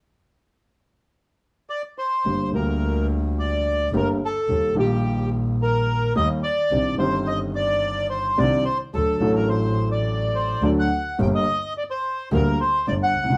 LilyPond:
<<
  \new Staff \with { instrumentName = "Bandoneon" } { \time 4/4 \key g \minor \tempo 4 = 108 r2. d''8 c''8~ | c''8 bes'4 r8 d''4 bes'8 a'8~ | a'8 g'4 r8 bes'4 ees''8 d''8~ | d''8 c''8 ees''8 d''4 c''8 d''8 c''8 |
a'8. bes'16 c''8. d''8. c''8 d''16 fis''8. | g''16 ees''8. d''16 c''8. bes'8 c''8 d''16 fis''8. | }
  \new Staff \with { instrumentName = "Upright piano" } { \clef bass \time 4/4 \key g \minor r1 | <g,, g, d g bes g'>8 <d, d g bes g'>2~ <d, d g bes g'>8 <g,, g, d g bes g'>8 r8 | <ees, ees g bes g'>8 <bes,, bes, ees g bes g'>2~ <bes,, bes, ees g bes g'>8 <ees, ees g bes g'>8 r8 | <c, c ees c' d' g'>8 <g,, g, ees c' d' g'>2~ <g,, g, ees c' d' g'>8 <c, c ees c' d' g'>8 r8 |
<d, d fis a d' a'>8 <a,, a, fis a d' a'>2~ <a,, a, fis a d' a'>8 <d, d fis a d' a'>8 r8 | <g,, g, d g bes g'>8 r4. <d, d g bes g'>8 r8 <g,, g,>8 r32 c,32 cis,32 r32 | }
  \new Staff \with { instrumentName = "Double bass" } { \clef bass \time 4/4 \key g \minor r1 | g,,8 d,2~ d,8 g,,8 r8 | ees,8 bes,,2~ bes,,8 ees,8 r8 | c,8 g,,2~ g,,8 c,8 r8 |
d,8 a,,2~ a,,8 d,8 r8 | g,,8 r4. d,8 r8 g,,8 cis,8 | }
>>